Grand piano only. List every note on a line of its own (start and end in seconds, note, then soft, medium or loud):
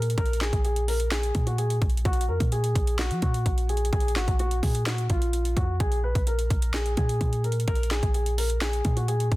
0.00 0.12 A#4 medium
0.18 0.35 A#4 loud
0.41 0.59 G#4 medium
0.65 0.82 G#4 medium
0.88 1.06 A#4 medium
1.11 1.44 G#4 medium
1.47 1.55 F#4 medium
1.58 1.76 G#4 medium
2.05 2.23 F#4 medium
2.29 2.46 A#4 medium
2.52 2.96 G#4 medium
2.99 3.17 F#4 medium
3.22 3.66 F#4 medium
3.69 3.87 G#4 medium
3.93 4.10 G#4 loud
4.16 4.34 F#4 medium
4.40 4.57 F#4 medium
4.63 4.81 G#4 medium
4.86 5.04 F#4 medium
5.10 5.54 F4 medium
5.57 5.74 F#4 medium
5.80 5.98 G#4 loud
6.04 6.21 B4 medium
6.27 6.71 A#4 medium
6.74 6.92 G#4 medium
6.97 7.41 G#4 medium
7.44 7.62 A#4 medium
7.68 7.85 A#4 loud
7.91 8.09 G#4 medium
8.15 8.32 G#4 medium
8.38 8.56 A#4 medium
8.61 8.94 G#4 medium
8.96 9.05 F#4 medium
9.08 9.26 G#4 medium